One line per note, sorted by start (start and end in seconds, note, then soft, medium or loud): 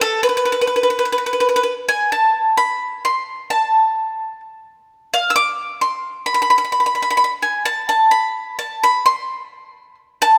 0.01 0.23 A4 medium
0.23 0.28 B4 medium
0.29 0.36 B4 soft
0.37 0.44 B4 medium
0.45 0.51 B4 medium
0.52 0.60 B4 medium
0.61 0.66 B4 medium
0.67 0.75 B4 soft
0.76 0.82 B4 soft
0.83 0.89 B4 medium
0.90 0.98 B4 soft
0.99 1.04 B4 medium
1.05 1.11 B4 soft
1.12 1.17 B4 medium
1.18 1.25 B4 soft
1.26 1.32 B4 soft
1.33 1.39 B4 soft
1.40 1.48 B4 medium
1.49 1.55 B4 soft
1.56 1.62 B4 medium
1.63 1.73 B4 soft
1.89 2.12 G#5 medium
2.12 2.56 A5 medium
2.58 3.04 B5 medium
3.05 3.50 C6 medium
3.50 4.40 A5 medium
5.14 5.31 F5 medium
5.30 5.35 E6 medium
5.36 5.79 D6 medium
5.81 6.26 C6 medium
6.26 6.33 B5 medium
6.34 6.41 B5 medium
6.42 6.49 B5 medium
6.50 6.57 B5 medium
6.58 6.63 B5 medium
6.65 6.71 B5 soft
6.72 6.79 B5 medium
6.80 6.85 B5 soft
6.86 6.94 B5 medium
6.95 7.01 B5 soft
7.02 7.09 B5 medium
7.11 7.16 B5 medium
7.17 7.23 B5 medium
7.24 7.32 B5 medium
7.42 7.65 G#5 medium
7.66 7.88 A5 medium
7.89 8.11 A5 medium
8.11 8.56 B5 medium
8.59 8.83 A5 medium
8.84 9.05 B5 medium
9.06 9.95 C6 medium
10.22 10.38 A5 medium